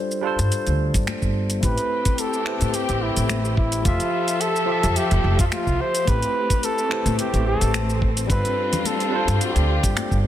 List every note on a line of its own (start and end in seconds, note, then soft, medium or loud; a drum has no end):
0.00 0.20 G3 medium
0.00 0.20 D4 medium
0.00 0.21 F4 medium
0.00 0.22 A4 medium
0.00 0.22 C5 loud
0.11 shaker soft
0.21 1.58 G3 medium
0.21 1.59 D4 medium
0.21 1.60 F4 medium
0.25 1.61 A4 medium
0.25 1.61 C5 loud
0.39 0.49 G2 medium
0.39 closed hi-hat soft
0.39 shaker medium
0.52 closed hi-hat medium
0.52 shaker medium
0.67 0.88 D2 loud
0.67 closed hi-hat soft
0.67 shaker soft
0.94 1.05 G2 loud
0.94 kick loud
0.94 closed hi-hat soft
0.94 shaker medium
1.07 finger snap medium
1.07 closed hi-hat medium
1.07 high conga medium
1.07 shaker medium
1.22 1.59 G1 medium
1.22 kick medium
1.22 shaker soft
1.50 closed hi-hat soft
1.50 shaker medium
1.60 1.75 A1 medium
1.60 2.42 A3 medium
1.60 3.83 A3 medium
1.60 3.83 C4 medium
1.60 2.43 E4 medium
1.60 2.43 G4 medium
1.60 3.83 G4 medium
1.60 2.21 B4 loud
1.60 kick loud
1.60 closed hi-hat medium
1.60 shaker medium
1.64 2.45 C4 medium
1.64 2.44 B4 medium
1.78 closed hi-hat soft
1.78 shaker soft
2.05 kick loud
2.05 closed hi-hat soft
2.05 shaker medium
2.18 2.76 A4 medium
2.18 closed hi-hat medium
2.18 shaker soft
2.33 shaker soft
2.45 2.55 A3 medium
2.45 2.55 E4 medium
2.45 2.55 G4 medium
2.45 2.56 B4 medium
2.45 2.56 C5 medium
2.45 finger snap medium
2.61 2.71 A2 medium
2.61 closed hi-hat soft
2.61 shaker medium
2.74 3.04 G4 medium
2.74 closed hi-hat soft
2.74 shaker medium
2.89 3.10 A1 medium
2.89 closed hi-hat soft
2.89 shaker soft
3.02 3.56 E4 medium
3.17 3.81 A1 medium
3.17 closed hi-hat soft
3.17 shaker medium
3.29 finger snap medium
3.29 closed hi-hat medium
3.29 high conga medium
3.29 shaker medium
3.45 shaker soft
3.57 3.87 E4 medium
3.57 kick loud
3.72 closed hi-hat soft
3.72 shaker medium
3.82 3.97 F1 medium
3.82 4.64 F3 medium
3.82 6.05 F3 medium
3.82 4.65 F4 medium
3.82 4.42 F4 loud
3.82 4.65 G4 medium
3.82 8.26 G4 medium
3.82 6.05 A4 medium
3.82 6.05 E5 medium
3.82 kick loud
3.82 closed hi-hat medium
3.82 shaker medium
3.87 4.66 A4 medium
3.87 4.67 E5 loud
4.00 closed hi-hat soft
4.00 shaker soft
4.28 closed hi-hat soft
4.28 shaker medium
4.41 4.98 A4 loud
4.41 closed hi-hat medium
4.41 shaker medium
4.56 shaker soft
4.66 6.03 F3 loud
4.66 6.04 F4 medium
4.66 6.04 G4 medium
4.70 6.05 A4 medium
4.70 6.06 E5 loud
4.83 4.94 F2 loud
4.83 closed hi-hat soft
4.83 shaker medium
4.96 5.39 G4 loud
4.96 closed hi-hat medium
4.96 shaker medium
5.11 5.22 F1 loud
5.11 closed hi-hat soft
5.11 shaker soft
5.24 5.36 F1 loud
5.39 5.49 F2 medium
5.39 5.45 F4 medium
5.39 kick loud
5.39 closed hi-hat soft
5.39 shaker medium
5.52 5.82 F4 loud
5.52 finger snap medium
5.52 closed hi-hat medium
5.52 high conga medium
5.52 shaker medium
5.67 5.77 C2 medium
5.67 kick medium
5.67 shaker soft
5.81 6.10 C5 loud
5.95 closed hi-hat soft
5.95 shaker medium
6.05 6.19 A1 loud
6.05 6.86 A3 medium
6.05 8.28 A3 medium
6.05 10.27 C4 medium
6.05 6.87 E4 medium
6.05 6.88 G4 medium
6.05 6.66 B4 loud
6.05 kick loud
6.05 closed hi-hat medium
6.05 shaker medium
6.09 6.89 C4 medium
6.09 6.89 B4 medium
6.22 closed hi-hat soft
6.22 shaker soft
6.50 kick loud
6.50 closed hi-hat soft
6.50 shaker medium
6.63 7.18 A4 loud
6.63 closed hi-hat medium
6.63 shaker medium
6.78 shaker soft
6.89 6.99 A3 medium
6.89 6.99 E4 medium
6.89 7.00 G4 medium
6.89 7.00 B4 medium
6.89 7.01 C5 medium
6.89 finger snap medium
7.06 7.16 A2 medium
7.06 closed hi-hat soft
7.06 shaker medium
7.19 7.45 G4 loud
7.19 closed hi-hat medium
7.19 shaker medium
7.33 7.55 A1 medium
7.33 closed hi-hat soft
7.33 shaker soft
7.47 7.98 A4 loud
7.61 8.25 A1 medium
7.61 closed hi-hat soft
7.61 shaker medium
7.74 finger snap medium
7.74 closed hi-hat medium
7.74 high conga medium
7.74 shaker medium
7.90 shaker soft
8.02 kick loud
8.17 closed hi-hat soft
8.17 shaker medium
8.27 8.41 G1 medium
8.27 9.09 G3 medium
8.27 10.27 G3 medium
8.27 9.09 D4 medium
8.27 9.10 F4 medium
8.27 10.27 F4 medium
8.27 kick loud
8.27 closed hi-hat medium
8.27 shaker medium
8.31 9.11 C4 medium
8.31 9.11 A4 medium
8.31 8.87 B4 loud
8.45 closed hi-hat soft
8.45 shaker soft
8.73 closed hi-hat soft
8.73 low conga medium
8.73 shaker medium
8.85 9.41 A4 loud
8.85 closed hi-hat medium
8.85 high conga medium
8.85 shaker medium
9.00 closed hi-hat soft
9.00 shaker soft
9.10 10.27 G3 loud
9.10 10.27 D4 medium
9.10 10.27 F4 medium
9.14 10.27 A4 medium
9.14 10.27 C5 loud
9.28 9.38 G2 loud
9.28 closed hi-hat soft
9.28 shaker medium
9.41 10.21 G4 medium
9.41 closed hi-hat medium
9.41 shaker medium
9.56 9.77 D2 loud
9.56 closed hi-hat soft
9.56 shaker soft
9.83 9.94 G2 medium
9.83 kick loud
9.83 closed hi-hat soft
9.83 shaker medium
9.97 finger snap medium
9.97 closed hi-hat medium
9.97 high conga medium
9.97 shaker medium
10.11 10.27 G1 medium
10.11 kick medium
10.11 shaker soft